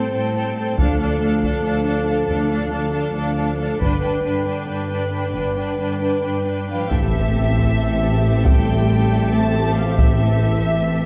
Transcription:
0.00 0.76 G3 soft
0.00 0.13 C4 soft
0.00 0.13 A4 soft
0.00 0.76 C5 soft
0.00 0.13 G5 soft
0.13 0.70 A2 medium
0.13 0.35 C4 soft
0.13 0.34 A4 soft
0.13 0.35 G5 soft
0.35 0.57 C4 soft
0.35 0.55 A4 soft
0.35 0.57 G5 soft
0.56 0.79 C4 soft
0.56 0.78 A4 soft
0.56 0.79 G5 soft
0.78 1.16 D2 medium
0.78 1.15 D2 medium
0.78 3.82 F3 soft
0.78 1.00 D4 soft
0.78 3.77 A4 medium
0.78 0.98 A4 soft
0.78 0.98 F5 medium
0.78 taiko medium
0.99 1.21 D4 medium
0.99 1.19 A4 soft
0.99 1.21 F5 soft
1.21 1.60 D2 medium
1.21 1.42 D4 soft
1.21 1.42 A4 medium
1.21 1.43 F5 soft
1.43 1.63 D4 soft
1.43 1.63 A4 soft
1.43 1.65 F5 soft
1.43 taiko soft
1.64 2.22 D2 medium
1.64 1.85 D4 soft
1.64 1.84 A4 soft
1.64 1.85 F5 soft
1.86 2.06 D4 soft
1.86 2.04 A4 soft
1.86 2.07 F5 soft
2.06 2.27 D4 soft
2.06 2.27 A4 soft
2.06 2.25 F5 soft
2.27 2.66 D2 medium
2.27 2.68 D2 medium
2.27 2.50 D4 soft
2.27 2.49 A4 soft
2.27 2.49 F5 soft
2.50 2.72 D4 soft
2.50 2.68 A4 soft
2.50 2.71 F5 soft
2.69 3.11 D2 soft
2.69 2.92 D4 soft
2.69 2.91 A4 soft
2.69 2.94 F5 soft
2.93 3.15 D4 soft
2.93 3.12 A4 soft
2.93 3.16 F5 soft
3.14 3.73 D2 medium
3.14 3.36 D4 soft
3.14 3.36 A4 soft
3.14 3.36 F5 soft
3.37 3.59 D4 soft
3.37 3.57 A4 soft
3.37 3.58 F5 soft
3.58 3.81 D4 soft
3.58 3.80 A4 soft
3.58 3.81 F5 soft
3.80 4.18 G1 medium
3.80 4.19 G2 soft
3.80 6.53 D3 soft
3.80 4.03 D4 soft
3.80 4.00 B4 soft
3.80 6.53 B4 soft
3.80 4.01 G5 soft
3.80 taiko medium
4.01 4.24 D4 soft
4.01 4.21 B4 soft
4.01 4.23 G5 soft
4.22 4.64 G2 soft
4.22 4.47 D4 soft
4.22 4.45 B4 soft
4.22 4.45 G5 soft
4.46 4.68 D4 soft
4.46 4.66 B4 soft
4.46 4.66 G5 soft
4.67 5.27 G2 soft
4.67 4.90 D4 soft
4.67 4.89 B4 soft
4.67 4.88 G5 soft
4.89 5.12 D4 soft
4.89 5.10 B4 soft
4.89 5.10 G5 soft
5.11 5.34 D4 soft
5.11 5.32 B4 soft
5.11 5.34 G5 soft
5.33 5.73 G1 soft
5.33 5.75 G2 soft
5.33 5.57 D4 soft
5.33 5.55 B4 soft
5.33 5.55 G5 soft
5.56 5.79 D4 soft
5.56 5.76 B4 soft
5.56 5.77 G5 soft
5.77 6.20 G2 soft
5.77 6.01 D4 soft
5.77 6.00 B4 soft
5.77 5.98 G5 soft
5.99 6.23 D4 soft
5.99 6.22 B4 soft
5.99 6.21 G5 soft
6.22 6.85 G2 soft
6.22 6.46 D4 soft
6.22 6.46 B4 soft
6.22 6.45 G5 soft
6.46 6.68 D4 soft
6.46 6.69 B4 soft
6.46 6.69 G5 soft
6.69 6.91 F3 soft
6.69 6.91 D4 soft
6.69 6.92 B4 soft
6.69 6.90 F5 soft
6.69 6.92 G5 soft
6.90 11.06 A1 soft
6.90 11.06 A2 soft
6.90 8.42 E3 soft
6.90 11.06 C4 soft
6.90 11.06 G4 soft
6.90 11.06 A4 soft
6.90 11.06 E5 soft
6.90 8.45 E5 medium
6.90 taiko medium
6.90 impact soft
7.58 taiko soft
8.45 9.31 G3 medium
8.45 9.33 G5 medium
8.45 taiko medium
9.32 9.76 A3 medium
9.32 9.76 A5 medium
9.77 9.98 F3 soft
9.77 9.98 F5 medium
9.98 11.06 E3 soft
9.98 11.06 E5 medium
9.98 taiko medium

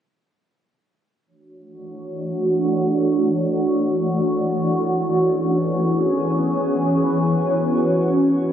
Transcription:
1.26 8.53 E3 medium
1.26 5.06 A3 medium
1.26 5.06 D4 medium
1.26 5.06 F#4 medium
1.26 8.53 C#5 medium
5.10 8.53 B3 medium
5.10 8.53 C#4 medium
5.10 7.00 G#4 medium
7.02 8.53 F#4 medium

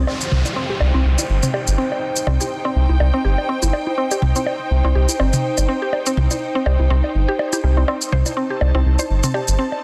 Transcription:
0.07 0.14 C4 loud
0.07 9.84 D#4 medium
0.07 high bongo medium
0.07 downlifter medium
0.18 9.84 C5 medium
0.18 shaker soft
0.32 0.43 C2 loud
0.32 mid tom medium
0.44 8.44 G5 medium
0.44 high bongo soft
0.44 high conga soft
0.44 shaker soft
0.56 0.62 C4 loud
0.70 0.75 G4 medium
0.80 0.92 C2 loud
0.80 high bongo medium
0.94 1.03 C2 medium
0.94 0.99 C4 loud
0.94 high conga soft
1.05 1.16 C2 loud
1.19 high bongo soft
1.19 high conga medium
1.19 shaker soft
1.29 1.41 G1 medium
1.43 1.48 C4 medium
1.43 mid tom medium
1.43 shaker soft
1.54 1.60 G4 medium
1.54 high bongo medium
1.67 1.76 G1 medium
1.67 shaker soft
1.78 1.84 C4 medium
1.92 high bongo soft
2.16 shaker soft
2.27 2.38 C2 loud
2.27 2.33 C4 medium
2.27 mid tom medium
2.27 high bongo medium
2.40 2.45 G4 medium
2.40 high conga soft
2.40 shaker soft
2.65 2.70 C4 loud
2.65 high bongo soft
2.76 2.87 C2 loud
2.89 2.98 C2 medium
2.89 high conga medium
3.00 3.11 C2 loud
3.00 high bongo medium
3.14 3.19 C4 loud
3.24 3.36 G1 medium
3.24 3.31 G4 medium
3.38 high bongo soft
3.49 3.55 C4 loud
3.62 3.71 G1 medium
3.62 high conga medium
3.62 shaker soft
3.73 high bongo medium
3.87 high conga medium
3.98 4.04 C4 loud
4.11 4.16 G4 medium
4.11 high bongo soft
4.11 shaker soft
4.22 4.33 C2 loud
4.22 mid tom medium
4.36 4.41 C4 loud
4.36 high conga soft
4.36 shaker soft
4.46 high bongo medium
4.71 4.82 C2 loud
4.84 4.93 C2 medium
4.84 4.89 C4 loud
4.84 high bongo soft
4.84 high conga medium
4.95 5.06 C2 loud
4.95 5.01 G4 medium
5.09 high conga medium
5.09 shaker soft
5.20 5.31 G1 medium
5.20 5.26 C4 loud
5.20 high bongo medium
5.33 mid tom medium
5.33 shaker soft
5.58 5.67 G1 medium
5.58 high bongo soft
5.58 shaker soft
5.68 5.75 C4 medium
5.82 5.87 G4 medium
5.93 high bongo medium
6.06 6.11 C4 loud
6.06 shaker soft
6.17 6.28 C2 loud
6.17 mid tom medium
6.31 high bongo soft
6.31 high conga soft
6.31 shaker soft
6.55 6.60 C4 loud
6.66 6.77 C2 loud
6.66 6.72 G4 medium
6.66 high bongo medium
6.79 6.88 C2 medium
6.79 high conga soft
6.90 7.02 C2 loud
6.90 6.97 C4 medium
7.04 high bongo soft
7.15 7.26 G1 medium
7.28 7.33 G4 medium
7.39 high bongo medium
7.53 7.58 G4 medium
7.53 high conga medium
7.53 shaker soft
7.64 7.84 C2 loud
7.64 7.67 G3 medium
7.77 7.82 C4 medium
7.77 high bongo soft
7.77 high conga medium
7.88 7.94 C4 loud
7.88 high bongo medium
8.02 shaker soft
8.12 8.24 C2 loud
8.12 8.16 C5 loud
8.12 mid tom medium
8.26 9.84 A5 medium
8.26 high bongo soft
8.26 high conga soft
8.26 shaker soft
8.37 8.43 C4 loud
8.50 8.55 G4 medium
8.61 8.72 C2 loud
8.61 high bongo medium
8.75 8.84 C2 medium
8.75 8.80 C4 loud
8.75 high conga soft
8.86 8.97 C2 loud
8.99 9.02 C5 loud
8.99 high bongo soft
8.99 high conga medium
8.99 shaker soft
9.10 9.21 G1 medium
9.23 9.28 C4 medium
9.23 mid tom medium
9.23 shaker soft
9.34 9.40 G4 medium
9.34 high bongo medium
9.48 9.57 G1 medium
9.48 shaker soft
9.59 9.65 C4 medium
9.72 high bongo soft

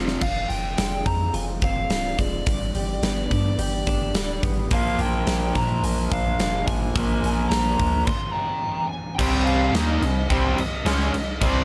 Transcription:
0.00 0.18 F1 medium
0.00 0.19 F2 medium
0.00 0.20 F2 medium
0.00 0.20 C3 medium
0.00 0.21 C3 medium
0.00 0.21 F3 medium
0.06 0.21 F3 medium
0.06 0.20 G#3 medium
0.06 0.20 C4 medium
0.06 0.19 F4 medium
0.06 snare medium
0.20 0.47 F1 medium
0.20 1.62 F2 medium
0.20 0.50 F5 medium
0.20 kick loud
0.20 crash loud
0.49 0.76 F1 medium
0.49 1.33 F4 medium
0.49 1.06 G5 loud
0.49 open hi-hat soft
0.77 1.04 F1 medium
0.77 2.18 G#3 medium
0.77 snare loud
0.77 open hi-hat medium
1.06 1.32 F2 medium
1.06 1.62 C4 medium
1.06 1.33 A#5 medium
1.06 kick medium
1.06 open hi-hat soft
1.34 1.60 F1 medium
1.34 2.47 F4 medium
1.34 1.42 G#5 medium
1.34 open hi-hat medium
1.62 1.88 F1 medium
1.62 2.47 C4 medium
1.62 2.19 F5 medium
1.62 kick medium
1.62 open hi-hat soft
1.90 2.16 C1 medium
1.90 2.47 F3 medium
1.90 snare loud
1.90 open hi-hat medium
2.18 2.44 D#1 medium
2.18 2.47 G#3 medium
2.18 3.02 D5 medium
2.18 kick medium
2.18 open hi-hat medium
2.46 2.73 G1 medium
2.46 3.88 G2 medium
2.46 kick loud
2.46 open hi-hat medium
2.75 3.01 G1 medium
2.75 3.58 G4 medium
2.75 open hi-hat medium
3.02 3.28 G1 medium
3.02 4.42 B3 medium
3.02 3.58 D5 medium
3.02 snare loud
3.02 open hi-hat medium
3.31 3.57 G2 medium
3.31 3.86 D4 medium
3.31 kick medium
3.31 open hi-hat medium
3.59 3.85 G1 medium
3.59 4.71 G4 medium
3.59 3.85 D5 medium
3.59 open hi-hat medium
3.87 4.13 G1 medium
3.87 5.55 D4 medium
3.87 4.40 D5 medium
3.87 kick medium
3.87 open hi-hat medium
4.14 4.41 D1 medium
4.14 4.71 G3 medium
4.14 snare loud
4.14 open hi-hat medium
4.43 4.69 G#1 loud
4.43 4.71 B3 medium
4.43 kick medium
4.43 open hi-hat medium
4.70 4.97 A#1 medium
4.70 6.11 A#2 medium
4.70 6.94 A#2 medium
4.70 6.95 F3 medium
4.70 6.95 A#3 loud
4.70 5.01 F5 medium
4.70 kick loud
4.70 open hi-hat medium
4.99 5.25 A#1 medium
4.99 5.82 A#4 medium
4.99 5.56 G5 medium
4.99 open hi-hat medium
5.27 5.53 A#1 medium
5.27 6.66 A#3 medium
5.27 snare loud
5.27 open hi-hat medium
5.55 5.81 A#2 medium
5.55 6.10 D4 medium
5.55 5.83 A#5 medium
5.55 kick medium
5.55 snare soft
5.55 open hi-hat medium
5.83 6.09 A#1 loud
5.83 7.22 A#4 medium
5.83 6.10 G#5 loud
5.83 open hi-hat medium
6.11 6.37 A#1 medium
6.11 7.51 D4 medium
6.11 6.66 F5 medium
6.11 kick medium
6.11 open hi-hat medium
6.38 6.65 F1 medium
6.38 7.79 F3 medium
6.38 snare loud
6.38 open hi-hat medium
6.67 6.93 G#1 medium
6.67 7.50 A#3 medium
6.67 7.47 G#5 medium
6.67 kick medium
6.67 open hi-hat medium
6.95 7.21 A#1 medium
6.95 8.07 A#2 medium
6.95 8.06 A#2 medium
6.95 8.06 F3 medium
6.95 8.07 A#3 loud
6.95 kick loud
6.95 open hi-hat medium
7.23 7.49 A#1 medium
7.23 8.07 A#4 medium
7.23 open hi-hat medium
7.49 7.77 A#1 medium
7.49 8.07 A#3 medium
7.49 8.05 A#5 medium
7.49 snare loud
7.49 open hi-hat medium
7.79 8.05 D2 medium
7.79 8.07 D4 medium
7.79 kick medium
7.79 open hi-hat medium
8.05 8.32 C6 loud
8.05 kick loud
8.05 crash medium
8.32 8.89 G5 loud
8.32 8.85 A#5 loud
8.89 9.15 G#5 loud
9.16 9.71 C2 medium
9.16 9.74 C3 medium
9.16 9.74 G3 loud
9.16 9.44 G5 loud
9.16 kick loud
9.16 crash loud
9.16 crash medium
9.20 9.74 C4 loud
9.45 9.74 F5 medium
9.45 crash medium
9.73 9.99 D#2 medium
9.73 10.02 D#3 medium
9.73 10.02 A#3 loud
9.73 10.02 D#4 medium
9.73 10.32 D#5 medium
9.73 snare loud
9.73 crash medium
10.02 10.28 C2 medium
10.02 10.25 C3 medium
10.02 10.25 G3 medium
10.02 crash medium
10.29 10.56 C2 loud
10.29 10.56 C3 medium
10.29 10.58 G3 medium
10.29 10.58 C4 loud
10.29 10.59 G5 loud
10.29 kick loud
10.29 crash medium
10.57 10.84 C2 soft
10.57 11.42 D#5 loud
10.57 muted overdriven electric guitar stroke medium
10.57 crash medium
10.85 11.11 C#2 medium
10.85 11.13 C#3 medium
10.85 11.13 G#3 medium
10.85 11.13 C#4 loud
10.85 snare loud
10.85 crash medium
11.00 snare soft
11.13 11.40 C2 soft
11.13 muted overdriven electric guitar stroke medium
11.13 crash medium
11.41 11.64 C2 medium
11.41 11.64 C3 loud
11.41 11.64 G3 medium
11.41 11.64 C4 loud
11.41 11.64 D5 loud
11.41 kick loud
11.41 crash medium

